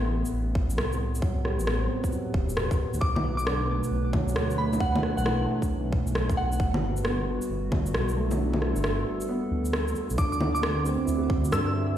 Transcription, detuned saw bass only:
0.00 0.23 A1 medium
0.34 0.77 A1 medium
0.78 1.58 C2 medium
1.59 1.89 A1 medium
2.34 2.78 E1 loud
2.94 3.01 D2 medium
3.01 3.81 B1 medium
3.91 4.35 B1 medium
4.36 5.16 D2 medium
5.18 5.47 B1 medium
5.70 6.37 B1 medium
6.38 6.59 B1 loud
6.60 7.40 G1 medium
7.50 7.93 G1 medium
7.95 8.74 B1 medium
8.76 9.05 G1 medium
9.51 9.95 D2 loud
10.11 10.18 B1 medium
10.18 10.98 D2 medium
11.08 11.52 D2 medium
11.53 11.98 G2 medium

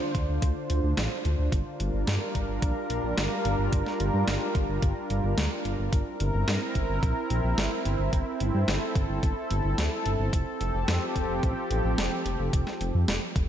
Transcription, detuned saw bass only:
0.15 0.25 D2 medium
0.29 0.39 D2 medium
0.42 0.52 D2 loud
0.70 0.80 D2 loud
0.84 0.94 D2 medium
0.98 1.08 A1 loud
1.25 1.35 D2 loud
1.39 1.49 D2 medium
1.52 1.63 G1 loud
1.80 1.90 G1 medium
1.94 2.04 G1 medium
2.08 2.18 G2 loud
2.35 2.45 G1 medium
2.49 2.59 G1 medium
2.62 2.73 A#1 loud
2.90 3.00 A#1 medium
3.04 3.14 A#1 medium
3.18 3.28 G1 loud
3.45 3.55 G1 loud
3.59 3.69 G1 medium
3.73 3.83 G1 loud
4.00 4.10 G1 loud
4.14 4.24 G2 medium
4.27 4.38 G1 loud
4.55 4.65 G1 medium
4.69 4.79 G1 medium
4.83 4.93 G1 loud
5.10 5.20 G1 medium
5.24 5.34 G1 medium
5.38 5.48 D2 loud
5.65 5.75 G1 loud
5.79 5.89 G1 medium
5.93 6.03 G1 loud
6.20 6.30 G1 loud
6.34 6.44 G1 medium
6.48 6.58 G2 loud
6.75 6.85 G1 medium
6.89 6.99 G1 medium
7.03 7.13 A#1 loud
7.30 7.40 A#1 medium
7.44 7.54 A#1 medium
7.58 7.68 G1 loud
7.85 7.96 G1 medium
7.99 8.09 G1 medium
8.13 8.23 G1 loud
8.41 8.51 G1 medium
8.54 8.64 G2 medium
8.68 8.78 G1 loud
8.95 9.06 G1 medium
9.09 9.20 G1 medium
9.23 9.33 G1 medium
9.51 9.61 G1 medium
9.64 9.75 G1 medium
9.78 9.88 D2 loud
10.06 10.16 G1 medium
10.20 10.30 G1 medium
10.33 10.43 F1 loud
10.61 10.71 F1 medium
10.74 10.85 F1 medium
10.88 10.98 F2 loud
11.16 11.26 F1 medium
11.29 11.40 F1 medium
11.43 11.53 A1 loud
11.70 11.81 A1 medium
11.84 11.95 A1 medium
11.98 12.08 F1 loud
12.26 12.36 F1 loud
12.39 12.50 F1 medium
12.53 12.63 F1 medium
12.81 12.91 F1 medium
12.95 13.05 F2 medium
13.08 13.18 F1 loud
13.36 13.46 F1 medium

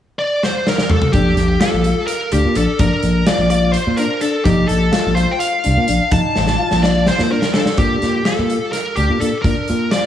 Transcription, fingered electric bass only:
1.14 1.32 A#1 medium
1.37 1.56 A#1 medium
1.74 1.92 A#1 medium
2.33 2.42 D2 medium
2.45 2.54 A#2 medium
2.56 2.65 A#1 medium
2.80 2.89 A#1 loud
3.03 3.22 A#1 medium
3.38 3.75 A#1 medium
3.87 4.05 A#2 medium
4.46 4.64 A#1 loud
4.71 4.88 A#1 medium
5.07 5.24 A#1 medium
5.66 5.75 C2 medium
5.77 5.86 A#2 medium
5.89 5.98 A#1 medium
6.12 6.21 A#1 loud
6.37 6.55 A1 medium
6.72 7.09 A#1 medium
7.20 7.38 A#2 medium
7.78 7.97 A#2 medium
8.03 8.21 A#2 medium
8.39 8.57 A#2 medium
8.97 9.07 D2 medium
9.10 9.19 A#2 medium
9.22 9.31 A#2 medium
9.44 9.54 A#2 medium
9.70 9.88 A#2 medium

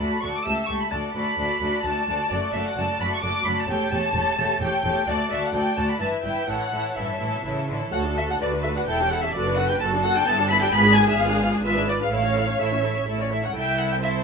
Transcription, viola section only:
0.00 0.22 A3 soft
0.00 0.21 F#4 soft
0.23 0.45 A3 soft
0.23 0.46 F#4 soft
0.46 0.68 A3 soft
0.46 0.67 G4 soft
0.69 0.91 A3 soft
0.69 0.91 G4 soft
0.92 1.14 A3 soft
0.92 1.14 F#4 soft
1.15 1.37 A3 soft
1.15 1.37 F#4 soft
1.38 1.60 A3 soft
1.38 1.60 F#4 soft
1.61 1.83 A3 soft
1.61 1.83 F#4 soft
1.84 2.06 A3 soft
1.84 2.06 F#4 soft
2.07 2.28 A3 soft
2.07 2.28 F#4 soft
2.29 2.52 A3 medium
2.29 2.52 F#4 soft
2.53 2.75 A3 soft
2.53 2.75 F#4 soft
2.76 2.99 A3 soft
2.76 2.99 F#4 soft
3.00 3.22 A3 soft
3.00 3.21 F#4 soft
3.23 3.45 A3 soft
3.23 3.45 F#4 soft
3.46 3.68 A3 soft
3.46 3.69 F#4 soft
3.70 3.91 A3 soft
3.70 3.91 G4 soft
3.92 4.15 A3 soft
3.92 4.15 G4 soft
4.16 4.38 A3 soft
4.16 4.38 G4 soft
4.39 4.61 A3 medium
4.39 4.60 G4 soft
4.61 4.83 A3 soft
4.61 4.83 G4 soft
4.84 5.06 A3 soft
4.84 5.07 G4 soft
5.08 5.29 A3 medium
5.08 5.30 F#4 soft
5.31 5.53 A3 soft
5.31 5.53 F#4 soft
5.54 5.76 A3 soft
5.54 5.76 F#4 soft
5.77 6.01 A3 soft
5.77 6.01 F#4 soft
6.00 6.22 E3 soft
6.00 6.23 E4 soft
6.24 6.47 E3 soft
6.24 6.47 E4 soft
6.48 6.71 E3 soft
6.48 6.71 E4 soft
6.72 6.95 E3 soft
6.72 6.95 E4 soft
6.96 7.19 E3 soft
6.96 7.19 E4 soft
7.20 7.43 E3 soft
7.20 7.43 E4 soft
7.44 7.68 E3 soft
7.44 7.68 E4 soft
7.69 7.93 E3 soft
7.69 7.93 E4 soft
7.93 8.04 F#4 soft
7.93 8.04 A4 soft
8.05 8.17 D4 soft
8.05 8.16 F#4 soft
8.17 8.28 F#4 soft
8.17 8.29 A4 soft
8.29 8.41 D4 soft
8.29 8.40 F#4 soft
8.41 8.52 F#4 soft
8.41 8.52 A4 soft
8.53 8.65 D4 soft
8.53 8.63 F#4 soft
8.65 8.76 F#4 soft
8.65 8.77 A4 soft
8.76 8.88 D4 soft
8.76 8.88 F#4 soft
8.89 9.00 E4 soft
8.89 8.99 A4 soft
9.00 9.12 C#4 soft
9.00 9.12 G4 soft
9.12 9.24 E4 soft
9.12 9.23 A4 soft
9.24 9.35 C#4 soft
9.24 9.35 G4 soft
9.35 9.46 F#4 medium
9.35 9.46 A4 medium
9.47 9.58 D4 soft
9.47 9.58 F#4 medium
9.59 9.69 F#4 medium
9.59 9.70 A4 soft
9.70 9.81 D4 soft
9.70 9.81 F#4 soft
9.82 9.92 F#4 soft
9.82 9.92 A4 medium
9.93 10.04 D4 medium
9.93 10.03 F#4 soft
10.04 10.15 F#4 soft
10.04 10.15 A4 medium
10.16 10.27 D4 medium
10.16 10.27 F#4 medium
10.27 10.38 B3 medium
10.27 10.38 E4 medium
10.39 10.50 D4 medium
10.39 10.50 G4 medium
10.51 10.62 B3 medium
10.51 10.62 E4 medium
10.62 10.73 D4 medium
10.62 10.73 G4 medium
10.73 10.84 B3 medium
10.73 10.83 F4 medium
10.84 10.95 D4 medium
10.84 10.95 G#4 medium
10.96 11.07 B3 medium
10.96 11.07 F4 medium
11.07 11.18 D4 medium
11.07 11.19 G#4 medium
11.18 11.29 B3 medium
11.18 11.29 F4 medium
11.29 11.42 D4 medium
11.29 11.41 G#4 soft
11.42 11.53 B3 medium
11.42 11.53 F4 medium
11.53 11.65 D4 medium
11.53 11.65 G#4 medium
11.65 11.76 B3 medium
11.65 11.76 F4 medium
11.77 11.89 D4 medium
11.77 11.89 G#4 soft
11.88 12.01 B3 soft
11.88 12.01 F4 soft
12.00 12.13 D4 soft
12.00 12.12 G#4 soft
12.12 12.23 E4 soft
12.12 12.23 A4 soft
12.24 12.36 C#4 soft
12.24 12.36 C#5 soft
12.36 12.48 E4 soft
12.36 12.49 A4 soft
12.48 12.60 C#4 soft
12.48 12.60 C#5 soft
12.60 12.72 E4 soft
12.60 12.71 A4 soft
12.72 12.84 C#4 soft
12.72 12.84 C#5 soft
12.84 12.96 E4 soft
12.84 12.96 A4 soft
12.96 13.08 C#4 soft
12.96 13.08 C#5 soft
13.08 13.19 E4 soft
13.08 13.19 A4 soft
13.20 13.32 C#4 soft
13.20 13.32 C#5 soft
13.32 13.44 E4 soft
13.32 13.44 A4 soft
13.44 13.56 C#4 soft
13.44 13.56 C#5 soft
13.56 14.00 E4 medium
13.56 14.00 A4 soft
14.02 14.23 E4 medium
14.02 14.23 A4 medium

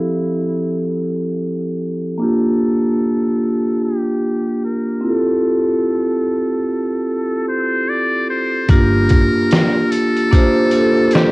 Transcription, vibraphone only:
0.00 1.76 F3 medium
0.00 1.74 C4 medium
0.00 1.75 E4 medium
0.00 1.77 G4 medium
0.00 1.78 A4 medium
2.18 4.99 A#3 medium
2.18 5.00 D4 medium
2.18 5.01 F4 medium
2.23 5.02 G4 medium
5.01 8.23 C4 medium
5.01 8.24 E4 medium
5.05 8.25 F4 medium
5.05 8.26 G4 soft
5.09 8.27 A4 medium
8.68 10.25 A#3 medium
8.68 10.25 D4 medium
8.68 10.26 F4 medium
8.68 10.26 G4 medium
10.31 10.70 A#3 medium
10.31 10.70 D4 medium
10.31 10.71 F4 medium
10.31 10.72 G4 medium
10.31 10.72 C5 medium
10.72 11.32 A#3 medium
10.72 11.32 D4 medium
10.72 11.32 F4 medium
10.72 11.32 G4 medium
10.72 11.32 A4 medium

